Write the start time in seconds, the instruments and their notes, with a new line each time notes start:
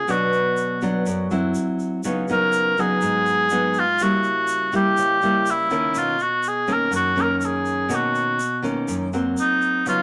Already playing: cor anglais G#4
0.08 nylon-string guitar B2 F#3 B3 D4, cor anglais F#4, shaker
0.33 shaker
0.57 shaker
0.81 nylon-string guitar F#3 B3 D4, shaker
1.06 nylon-string guitar F#2, shaker
1.31 nylon-string guitar F#3 C4 E4, shaker
1.54 shaker
1.79 shaker
2.03 nylon-string guitar C#3 F#3 B3 D#4, shaker
2.28 nylon-string guitar F#3 B3 D#4, cor anglais A#4, shaker
2.52 shaker
2.77 nylon-string guitar F#3 B3 D#4, cor anglais G#4, shaker
3.01 nylon-string guitar G#2, shaker
3.26 shaker
3.50 nylon-string guitar F#3 B3 D#4, shaker
3.74 shaker
3.79 cor anglais F4
3.99 nylon-string guitar C#3 G3 A#3 E4, shaker
4.03 cor anglais F#4
4.23 shaker
4.48 shaker
4.72 nylon-string guitar G3 A#3 E4, cor anglais G4, shaker
4.97 nylon-string guitar C#3, shaker
5.22 nylon-string guitar G3 A#3 E4, shaker
5.46 shaker
5.50 cor anglais E4
5.70 nylon-string guitar D#3 A#3 C#4, shaker
5.94 nylon-string guitar B2, cor anglais F4, shaker
6.19 cor anglais F#4, shaker
6.43 shaker
6.48 cor anglais G#4
6.67 nylon-string guitar D#3 A#3 C#4, shaker
6.73 cor anglais A#4
6.91 nylon-string guitar F#2, shaker
6.96 cor anglais F#4
7.16 nylon-string guitar D#3 A#3 C#4, shaker
7.21 cor anglais A#4
7.37 cor anglais A#4, shaker
7.46 cor anglais G#4
7.65 shaker
7.89 nylon-string guitar B2 D#3 A#3 C#4, shaker
7.95 cor anglais F#4
8.15 shaker
8.39 shaker
8.62 nylon-string guitar D#3 A#3 C#4, shaker
8.88 nylon-string guitar F#2, shaker
9.13 nylon-string guitar F#3 A#3 C4, shaker
9.37 cor anglais D#4, shaker
9.62 shaker
9.86 nylon-string guitar C#3 F#3 B3 D#4, cor anglais F4, shaker